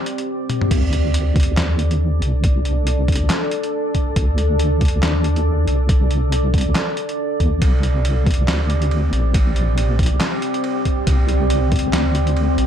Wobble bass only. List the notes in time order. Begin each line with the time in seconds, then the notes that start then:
0.71 D2
1.48 D2
1.57 D#2
2.22 C2
3.21 D2
4.16 D2
4.93 D2
5.03 D#2
5.68 C2
6.66 D2
7.40 D#2
7.62 C2
8.39 C2
8.48 D2
9.13 A#1
10.11 C2
11.07 C2
11.84 C2
11.93 D2
12.58 A#1